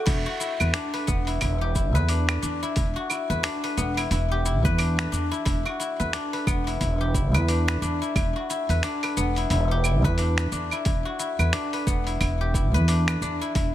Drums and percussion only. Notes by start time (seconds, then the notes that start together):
0.07 kick, open hi-hat, crash, cabasa
0.41 cabasa
0.60 cabasa, claves
0.74 finger snap, open hi-hat, cabasa
0.94 open hi-hat
1.08 kick, cabasa
1.27 open hi-hat, cabasa
1.41 kick, open hi-hat, cabasa, claves
1.75 kick, cabasa
1.96 cabasa
2.09 open hi-hat, cabasa
2.29 finger snap, open hi-hat, cabasa, claves
2.43 cabasa
2.63 cabasa
2.76 kick, open hi-hat, cabasa
3.10 cabasa, claves
3.31 cabasa
3.44 finger snap, open hi-hat, cabasa
3.64 open hi-hat
3.78 cabasa
3.97 open hi-hat, cabasa, claves
4.11 open hi-hat, cabasa
4.46 cabasa
4.65 kick, cabasa
4.79 open hi-hat, cabasa, claves
4.99 finger snap, open hi-hat, cabasa
5.13 cabasa
5.33 cabasa
5.46 kick, open hi-hat, cabasa
5.66 claves
5.80 cabasa
6.00 cabasa
6.13 finger snap, open hi-hat, cabasa
6.33 open hi-hat
6.47 kick, cabasa, claves
6.67 open hi-hat, cabasa
6.81 kick, open hi-hat, cabasa
7.14 kick, cabasa
7.34 cabasa, claves
7.48 open hi-hat, cabasa
7.68 finger snap, open hi-hat, cabasa
7.83 cabasa
8.03 cabasa
8.16 kick, open hi-hat, cabasa, claves
8.50 cabasa
8.69 open hi-hat, cabasa
8.83 finger snap, open hi-hat, cabasa
9.03 open hi-hat, claves
9.17 cabasa
9.36 open hi-hat, cabasa
9.50 open hi-hat, cabasa
9.84 cabasa, claves
10.04 kick, cabasa
10.18 open hi-hat, cabasa
10.38 finger snap, open hi-hat, cabasa
10.52 cabasa
10.71 cabasa, claves
10.85 kick, open hi-hat, cabasa
11.20 cabasa
11.39 cabasa, claves
11.53 finger snap, open hi-hat, cabasa
11.73 open hi-hat
11.87 kick, cabasa
12.07 open hi-hat, cabasa
12.21 kick, open hi-hat, cabasa, claves
12.54 kick, cabasa
12.75 cabasa
12.88 open hi-hat, cabasa
13.08 finger snap, open hi-hat, cabasa, claves
13.22 cabasa
13.42 cabasa
13.55 kick, open hi-hat, cabasa